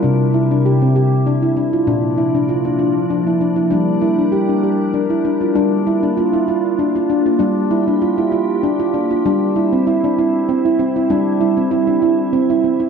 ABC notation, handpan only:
X:1
M:3/4
L:1/16
Q:"Swing 16ths" 1/4=98
K:Gdor
V:1 name="Handpan"
D2 E D G C G2 D E D F | D2 E D F D F2 D E D E | D2 E D G D G2 D E D F | D2 E D F E F2 D F D F |
D2 E D F E F2 D F D F | D2 E C E D E2 C E C E | D2 E C E D E2 C E C E |]
V:2 name="Handpan" clef=bass
C,12 | B,,12 | G,12 | G,12 |
G,12 | G,12 | G,12 |]